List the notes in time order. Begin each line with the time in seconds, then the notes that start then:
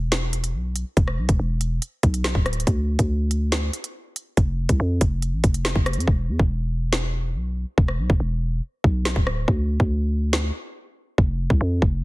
Already playing: E1
0.12 snare, closed hi-hat
0.33 closed hi-hat
0.44 closed hi-hat
0.54 B1
0.76 closed hi-hat
0.97 E1, kick, closed hi-hat
1.08 cross-stick
1.18 B1
1.29 E1, kick, closed hi-hat
1.39 E1
1.61 closed hi-hat
1.82 closed hi-hat
2.03 B1, kick, closed hi-hat
2.14 closed hi-hat
2.24 snare
2.35 D1, kick
2.46 cross-stick, closed hi-hat
2.53 closed hi-hat
2.60 closed hi-hat
2.67 D2, kick, closed hi-hat
2.99 D2, kick, closed hi-hat
3.31 closed hi-hat
3.52 snare, closed hi-hat
3.73 closed hi-hat
3.84 closed hi-hat
4.16 closed hi-hat
4.37 F1, kick, closed hi-hat
4.69 C2, kick, closed hi-hat
4.80 F2
5.01 F1, kick, closed hi-hat
5.22 closed hi-hat
5.33 A1
5.44 F1, kick, closed hi-hat
5.54 closed hi-hat
5.65 snare
5.76 F1, kick
5.86 cross-stick, closed hi-hat
5.93 F2, closed hi-hat
6.00 closed hi-hat
6.08 E1, kick
6.29 E2
6.39 E1, kick
6.93 snare
7.35 B1
7.78 E1, kick
7.88 cross-stick
7.99 B1
8.10 E1, kick
8.20 E1
8.84 B1, kick
9.05 snare
9.16 D1, kick
9.27 cross-stick
9.48 D2, kick
9.80 D2, kick
10.33 snare
11.18 F1, kick
11.50 C2, kick
11.61 F2
11.82 F1, kick